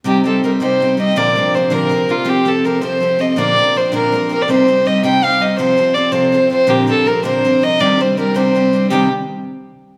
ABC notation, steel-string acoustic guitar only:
X:1
M:6/8
L:1/8
Q:3/8=108
K:Cdor
V:1 name="Steel-string acoustic guitar"
[C,G,CEG] [G,CEG] [G,CEG] [C,G,CEG] [G,CEG] [G,CEG] | [B,,D,F,B,DB] [F,B,DB] [F,B,DB] [B,,D,F,B,DB] [F,B,DB] [F,B,DB] | [F,CGA] [F,CGA] [F,CGA] [F,CGA] [F,CGA] [F,CGA] | [B,,D,F,B,DB] [F,B,DB] [F,B,DB] [B,,D,F,B,DB] [F,B,DB] [F,B,DB] |
[C,G,CEG] [G,CEG] [G,CEG] [C,G,CEG] [G,CEG] [G,CEG] | [C,F,CFA] [F,CFA] [F,CFA] [C,F,CFA] [F,CFA] [F,CFA] | [B,,D,F,CDB] [F,CDB] [F,CDB] [B,,D,F,CDB] [F,CDB] [F,CDB] | [C,E,G,CDG] [G,CDG] [G,CDG] [C,E,G,CDG] [G,CDG] [G,CDG] |
[C,E,G,CDG] z4 z |]